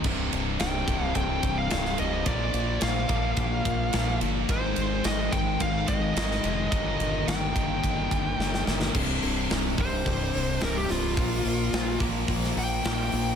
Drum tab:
CC |x---------------|----------------|----------------|----------------|
RD |--x-x-x-x-x-x-x-|x-x-x-x-x-x-x-x-|x-x-x-x-x-x-x-x-|x-x-x-x-x-x-----|
HH |----------------|----------------|----------------|----------------|
SD |----o-------oo--|----o-------o---|----o-------oo--|----o-------oooo|
BD |o-----o-o-o-----|o-----o-o-o-----|o-----o-o-o-----|o-----o-o-o-----|

CC |x---------------|----------------|
RD |----------------|----------------|
HH |--o-o-o-o-o-o-o-|o-o---o-o-o-o-o-|
SD |----o-------o-o-|----o----o--o---|
BD |o-----o-o-------|o-----o-o-------|